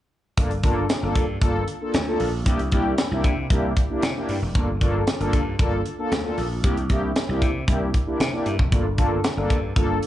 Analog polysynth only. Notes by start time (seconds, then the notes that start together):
0.37 A#3 D4 F4 A4
0.63 A#3 D4 F4 A4
1.02 A#3 D4 F4 A4
1.41 A#3 D4 F4 A4
1.81 A#3 D4 F4 A4
2.07 A#3 D4 F4 A4
2.46 A#3 D4 E4 G4
2.72 A#3 D4 E4 G4
3.11 A#3 D4 E4 G4
3.51 A#3 D4 E4 G4
3.90 A#3 D4 E4 G4
4.16 A#3 D4 E4 G4
4.55 A#3 D4 F4 A4
4.81 A#3 D4 F4 A4
5.20 A#3 D4 F4 A4
5.59 A#3 D4 F4 A4
5.99 A#3 D4 F4 A4
6.24 A#3 D4 F4 A4
6.63 A#3 D4 E4 G4
6.90 A#3 D4 E4 G4
7.29 A#3 D4 E4 G4
7.67 A#3 D4 E4 G4
8.06 A#3 D4 E4 G4
8.33 A#3 D4 E4 G4
8.72 A#3 D4 F4 A4
8.97 A#3 D4 F4 A4
9.37 A#3 D4 F4 A4
9.76 A#3 D4 F4 A4